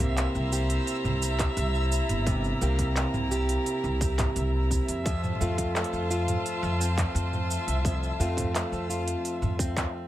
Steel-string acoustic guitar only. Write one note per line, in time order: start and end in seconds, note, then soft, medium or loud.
0.00 2.25 C3 medium
0.00 0.16 A#3 medium
0.00 1.21 C4 medium
0.00 0.51 G4 medium
0.17 2.60 A#3 medium
0.52 2.61 G4 medium
1.22 2.62 C4 medium
2.26 5.06 C3 medium
2.61 2.95 A#3 medium
2.61 4.01 C4 medium
2.61 3.30 G4 medium
2.96 5.13 A#3 medium
3.31 5.13 G4 medium
4.01 5.41 C4 medium
5.06 7.83 F2 medium
5.41 5.74 A3 medium
5.41 6.80 C4 medium
5.41 6.09 F4 medium
5.76 8.19 A3 medium
6.11 8.20 F4 medium
6.80 8.20 C4 medium
7.85 10.08 F2 medium
8.20 8.53 A3 medium
8.20 9.59 C4 medium
8.20 8.88 F4 medium
8.55 10.08 A3 medium
8.90 10.08 F4 medium
9.59 10.08 C4 medium